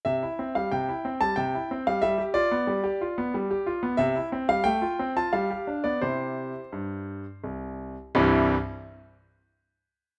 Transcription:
\new Staff \with { instrumentName = "Grand piano" } { \time 3/4 \key c \major \tempo 4 = 89 << { e''8. f''16 g''8. a''16 g''8. f''16 | e''8 d''2~ d''8 | e''8. f''16 g''8. a''16 f''8. d''16 | c''2 r4 |
<c, g, e g c' e'>8 r2 r8 | } \\ { c16 e'16 c'16 g16 c16 e'16 c'16 g16 c16 e'16 c'16 g16 | g16 g'16 f'16 b16 g16 g'16 f'16 b16 g16 g'16 f'16 b16 | c16 e'16 c'16 g16 a16 f'16 c'16 f'16 g16 g'16 d'16 b16 | <c e' g'>4 g,4 c,4 |
r2. | } >> }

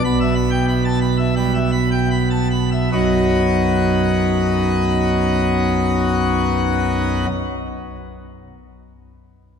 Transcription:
<<
  \new Staff \with { instrumentName = "Pipe organ" } { \time 4/4 \key e \dorian \tempo 4 = 71 b''16 e''16 b''16 g''16 b''16 a''16 b''16 e''16 b''16 e''16 b''16 g''16 b''16 a''16 b''16 e''16 | <b,, fis, fis b dis' fis'>1~ | <b,, fis, fis b dis' fis'>1 | }
  \new Staff \with { instrumentName = "Pipe organ" } { \clef bass \time 4/4 \key e \dorian << { b,2 g8 r4. | r1 | r1 | } \\ { b,,1 | r1 | r1 | } >> }
>>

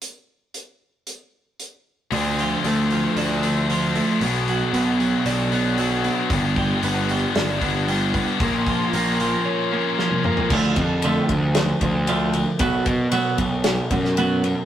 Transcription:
<<
  \new Staff \with { instrumentName = "Distorted electric guitar" } { \clef bass \time 4/4 \key d \dorian \tempo 4 = 114 r1 | <d f a d'>2~ <d f a d'>8 <d f a d'>8 <d f a d'>4 | <b, fis b d'>2~ <b, fis b d'>8 <b, fis b d'>8 <b, fis b d'>4 | <g, d g b d'>2~ <g, d g b d'>8 <g, d g b d'>8 <g, d g b d'>4 |
<bes, f bes des'>2~ <bes, f bes des'>8 <bes, f bes des'>8 <bes, f bes des'>4 | r1 | r1 | }
  \new Staff \with { instrumentName = "Clean electric guitar" } { \clef bass \time 4/4 \key d \dorian r1 | d8 f8 a8 f8 d'8 a8 f8 a8 | b,8 fis8 b8 fis8 d'8 b8 fis8 b8 | g,8 g8 b8 g8 d'8 b8 g8 b8 |
bes,8 f8 bes8 f8 des'8 bes8 f8 bes8 | <d f a>8 <d f>8 <d f a>8 <d f>8 <d f>8 <d f>8 <d f a>8 <d f>8 | <b, fis b>8 <b, fis>8 <b, fis b>8 <b, fis>8 <b, fis>8 <b, fis>8 <b, fis b>8 <b, fis>8 | }
  \new Staff \with { instrumentName = "Picked electric bass" } { \clef bass \time 4/4 \key d \dorian r1 | d,4 d,4 d,2 | b,,4 b,,4 b,,2 | g,,4 g,,4 g,,2 |
bes,,4 bes,,4 r2 | d,8 f,4 d,4 d,4. | b,,8 b,8 r8 b,,4 fis,4. | }
  \new DrumStaff \with { instrumentName = "Drums" } \drummode { \time 4/4 hh4 hh4 hh4 hh4 | hho8 hho8 hho8 hho8 hho8 hho8 hho8 hho8 | hho8 hho8 hho8 hho8 hho8 hho8 hho8 hho8 | <hho bd>8 <hho bd>8 hho8 hho8 <hho sn>8 <hho bd>8 hho8 <hho bd>8 |
<hho bd>8 <hho bd>8 hho8 hho8 r4 sn16 tommh16 toml16 tomfh16 | <cymc bd>8 <bd cymr>8 cymr8 <bd cymr>8 <cymr sn>8 <bd cymr>8 cymr8 cymr8 | <bd cymr>8 <bd cymr>8 cymr8 <bd cymr>8 <cymr sn>8 <bd cymr>16 sn16 cymr8 cymr8 | }
>>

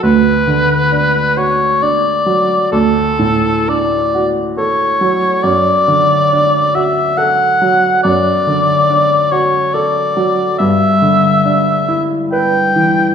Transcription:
<<
  \new Staff \with { instrumentName = "Oboe" } { \time 3/4 \key d \major \tempo 4 = 69 b'4. cis''8 d''4 | a'4 d''8 r8 cis''4 | d''4. e''8 fis''4 | d''4. cis''8 d''4 |
e''4. r8 g''4 | }
  \new Staff \with { instrumentName = "Grand piano" } { \time 3/4 \key d \major d,8 d8 d'8 fis'8 d'8 fis8 | d,8 a,8 d'8 fis'8 a'8 fis8 | fis,8 d8 d'8 fis'8 a'8 fis8 | fis,8 d8 d'8 fis'8 a'8 fis8 |
g,8 d8 d'8 e'8 b'8 e8 | }
>>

